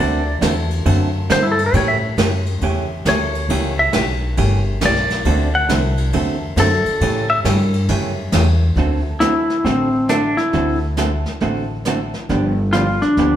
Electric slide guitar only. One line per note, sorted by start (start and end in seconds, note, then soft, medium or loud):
0.00 0.38 D5 medium
1.32 1.45 C5 medium
1.43 1.57 E4 medium
1.52 1.62 A4 medium
1.66 1.74 C5 medium
1.77 1.89 C#5 medium
1.88 1.97 E5 loud
3.09 3.76 C#5 medium
3.79 3.94 E5 loud
4.86 5.52 D5 medium
5.55 5.69 F#5 loud
6.60 7.27 A4 medium
7.30 7.39 E5 loud
9.20 9.66 E4 loud
9.65 10.10 C4 medium
10.09 10.39 D4 medium
10.37 10.78 E4 medium
12.73 13.02 F4 loud
13.02 13.36 D4 loud